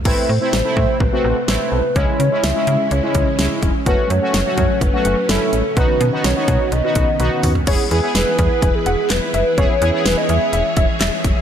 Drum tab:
CC |x---------------|----------------|----------------|----------------|
HH |----------------|x-x-x-x-x-x-x-x-|x-x-x-x-x-x-x-x-|x-x-x-x-x-x-x-o-|
CP |----------------|----------------|----------------|----------------|
SD |----o-------o---|----o-------o---|----o-------o---|----o-----------|
T1 |----------------|----------------|----------------|------------o---|
T2 |----------------|----------------|----------------|--------------o-|
FT |----------------|----------------|----------------|---------------o|
BD |o-----o-o-------|o---------o---o-|o-----o-o-------|o-----o---o-----|

CC |x---------------|----------------|
HH |x-x-x-x-x-x-x-x-|x-x-x-x-x-x-x-x-|
CP |------------x---|------------x---|
SD |----o-------o---|----o-------o---|
T1 |----------------|----------------|
T2 |----------------|----------------|
FT |----------------|----------------|
BD |o-----o-o-------|o---------o---o-|